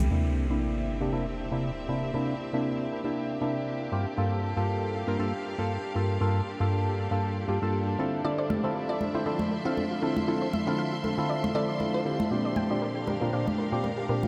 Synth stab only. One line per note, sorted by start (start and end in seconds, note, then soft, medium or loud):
0.11 0.47 C3 medium
0.11 0.47 A#3 medium
0.11 0.47 D4 medium
0.11 0.47 E4 medium
0.50 0.98 C3 medium
0.50 0.98 A#3 medium
0.50 0.98 D4 medium
0.50 0.98 E4 medium
1.01 1.11 C3 medium
1.01 1.11 A#3 medium
1.01 1.11 D4 medium
1.01 1.11 G4 medium
1.12 1.26 C3 medium
1.12 1.26 A#3 medium
1.12 1.26 D4 medium
1.12 1.26 E4 medium
1.51 1.71 C3 medium
1.51 1.71 A#3 medium
1.51 1.71 D4 medium
1.51 1.71 E4 medium
1.88 2.11 C3 medium
1.88 2.11 A#3 medium
1.88 2.12 D4 medium
1.88 2.12 E4 medium
2.14 2.34 C3 loud
2.14 2.34 A#3 medium
2.14 2.35 D4 medium
2.14 2.35 E4 loud
2.53 3.01 C3 medium
2.53 3.01 A#3 medium
2.53 3.01 D4 medium
2.53 3.01 E4 medium
3.04 3.38 C3 medium
3.04 3.39 A#3 medium
3.04 3.39 D4 medium
3.04 3.39 E4 medium
3.41 3.89 C3 medium
3.41 3.89 A#3 medium
3.41 3.90 D4 medium
3.41 3.90 E4 medium
3.92 4.05 G2 medium
3.92 4.06 A#3 medium
3.92 4.06 F4 medium
3.92 4.06 G4 medium
4.17 4.53 G2 medium
4.17 4.54 A#3 medium
4.17 4.54 F4 medium
4.17 4.54 A4 medium
4.56 5.04 G2 medium
4.56 5.04 A#3 medium
4.56 5.05 F4 medium
4.56 5.05 A4 medium
5.07 5.17 G2 medium
5.07 5.18 A#3 medium
5.07 5.18 F4 medium
5.07 5.18 A#4 medium
5.19 5.33 G2 medium
5.19 5.33 A#3 medium
5.19 5.33 F4 medium
5.19 5.33 A4 medium
5.58 5.78 G2 medium
5.58 5.78 A#3 medium
5.58 5.78 F4 medium
5.58 5.78 A4 medium
5.95 6.18 G2 medium
5.95 6.18 A#3 medium
5.95 6.18 F4 medium
5.95 6.19 A4 medium
6.21 6.41 G2 loud
6.21 6.41 A#3 medium
6.21 6.41 F4 medium
6.21 6.41 A4 loud
6.60 7.08 G2 medium
6.60 7.08 A#3 medium
6.60 7.08 F4 medium
6.60 7.08 A4 medium
7.11 7.45 G2 medium
7.11 7.45 A#3 medium
7.11 7.46 F4 medium
7.11 7.46 A4 medium
7.48 7.59 G2 medium
7.48 7.59 A#3 medium
7.48 7.59 F4 medium
7.48 7.59 G4 medium
7.62 7.96 G2 medium
7.62 7.96 A#3 medium
7.62 7.96 F4 medium
7.62 7.97 A4 loud
7.99 8.22 D3 medium
7.99 8.22 C4 medium
7.99 8.22 E4 medium
7.99 8.22 F4 medium
7.99 8.22 A4 medium
8.24 8.60 D3 medium
8.24 8.60 C4 medium
8.24 8.61 E4 medium
8.24 8.61 F4 medium
8.24 8.61 A4 medium
8.63 9.11 D3 medium
8.63 9.11 C4 medium
8.63 9.11 E4 medium
8.63 9.12 F4 medium
8.63 9.12 A4 medium
9.14 9.24 D3 medium
9.14 9.24 C4 medium
9.14 9.24 E4 medium
9.14 9.25 F4 medium
9.14 9.25 C5 medium
9.26 9.39 D3 medium
9.26 9.39 C4 medium
9.26 9.40 E4 medium
9.26 9.40 F4 medium
9.26 9.40 A4 loud
9.65 9.84 D3 medium
9.65 9.84 C4 medium
9.65 9.85 E4 medium
9.65 9.85 F4 medium
9.65 9.85 A4 medium
10.02 10.25 D3 medium
10.02 10.25 C4 medium
10.02 10.25 E4 medium
10.02 10.25 F4 medium
10.02 10.25 A4 medium
10.27 10.48 D3 medium
10.27 10.48 C4 medium
10.27 10.48 E4 medium
10.27 10.48 F4 medium
10.27 10.48 A4 loud
10.67 11.15 D3 medium
10.67 11.15 C4 medium
10.67 11.15 E4 medium
10.67 11.15 F4 medium
10.67 11.15 A4 medium
11.18 11.52 D3 medium
11.18 11.52 C4 medium
11.18 11.52 E4 medium
11.18 11.52 F4 medium
11.18 11.53 A4 medium
11.54 12.03 D3 medium
11.54 12.03 C4 medium
11.54 12.03 E4 medium
11.54 12.03 F4 medium
11.54 12.03 A4 medium
12.05 12.19 D3 medium
12.05 12.19 C4 medium
12.05 12.19 E4 medium
12.05 12.19 F4 medium
12.05 12.19 G4 medium
12.31 12.67 A#2 medium
12.31 12.67 C4 medium
12.31 12.67 D4 medium
12.31 12.68 G4 medium
12.70 13.18 A#2 medium
12.70 13.18 C4 medium
12.70 13.18 D4 medium
12.70 13.18 G4 medium
13.21 13.31 A#2 medium
13.21 13.31 C4 medium
13.21 13.31 D4 medium
13.21 13.31 A#4 medium
13.33 13.46 A#2 medium
13.33 13.46 C4 medium
13.33 13.46 D4 medium
13.33 13.47 G4 medium
13.72 13.91 A#2 medium
13.72 13.91 C4 medium
13.72 13.91 D4 medium
13.72 13.92 G4 medium
14.09 14.28 A#2 medium
14.09 14.28 C4 medium
14.09 14.28 D4 medium
14.09 14.28 G4 medium